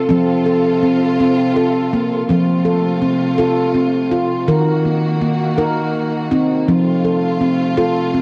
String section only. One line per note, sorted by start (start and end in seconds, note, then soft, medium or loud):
0.00 2.27 A4 medium
0.10 2.28 C3 medium
0.10 2.28 F4 medium
2.31 4.48 C3 medium
2.31 4.48 A3 soft
2.31 4.47 F4 medium
4.50 6.67 D#3 medium
4.50 6.67 A#3 medium
4.50 6.67 F#4 medium
6.69 8.22 C3 soft
6.69 8.22 A3 soft
6.69 8.22 F4 medium